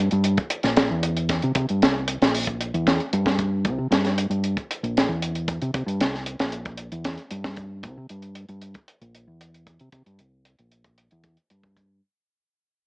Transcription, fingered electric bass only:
0.12 G2
0.64 A#1
0.91 E2
1.44 C3
1.55 C3
1.70 G2
1.83 C2
2.21 A#1
2.74 E2
3.13 G2
3.65 C2
3.78 C3
3.91 G2
4.30 G2
4.83 A#1
5.08 E2
5.62 C3
5.74 C3
5.86 G2
6.00 C2
6.40 A#1
6.92 E2
7.31 G2
7.84 C2
7.97 C3
8.10 G2
8.49 G2
9.01 A#1
9.27 E2
9.81 C3
9.92 C3
10.06 G2
10.20 C2
10.59 A#1
11.12 E2
11.51 G2

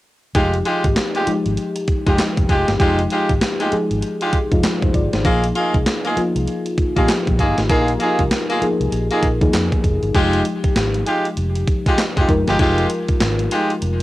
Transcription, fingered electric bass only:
0.35 F1
0.84 G#1
1.27 muted fingered electric bass stroke
1.46 G#1
1.88 muted fingered electric bass stroke
2.07 F1
2.38 F1
2.49 F1
2.68 G1
2.80 F1
3.30 G#1
3.72 muted fingered electric bass stroke
3.91 G#1
4.33 muted fingered electric bass stroke
4.52 F1
4.82 F1
4.94 G1
5.13 G#1
5.25 A#1
5.74 C2
6.17 muted fingered electric bass stroke
6.36 C2
6.78 muted fingered electric bass stroke
6.97 A#1
7.27 A#1
7.39 G1
7.58 G#1
7.70 A#1
8.19 C2
8.62 muted fingered electric bass stroke
8.80 C2
8.92 A#1
9.23 A#1
9.41 D#2
9.53 F2
9.84 F1
10.03 G1
10.15 F1
10.64 muted fingered electric bass stroke
10.76 G#1
11.37 F1
12.17 F1
12.29 F1
12.48 G1
12.59 F1
13.09 muted fingered electric bass stroke
13.21 G#1
13.82 F1

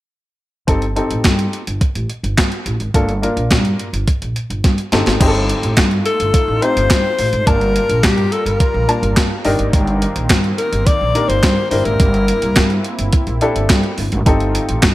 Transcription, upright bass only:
0.68 G1
1.11 A1
1.25 G2
1.67 G1
1.95 A1
2.23 G1
2.38 G2
2.66 A1
2.80 G#1
2.94 G1
3.37 A#1
3.51 G2
3.93 G1
4.22 A#1
4.50 G1
4.64 G2
4.92 G1
5.07 G#1
5.21 G1
5.63 A1
5.77 G2
6.20 G1
6.48 A1
6.76 G1
6.90 G2
7.19 A1
7.33 G#1
7.47 G1
7.89 A#1
8.04 G2
8.46 G1
8.74 A#1
9.02 G1
9.17 G2
9.45 G1
9.59 G#1
9.73 G1
10.16 A#1
10.30 G2
10.73 G1
11.01 A#1
11.29 G1
11.43 G2
11.71 G1
11.85 G#1
12.00 G1
12.43 C2
12.56 G2
12.99 G1
13.27 A#1
13.56 G1
13.70 G2
13.98 G1
14.12 G#1
14.26 G1
14.69 A1
14.83 G2

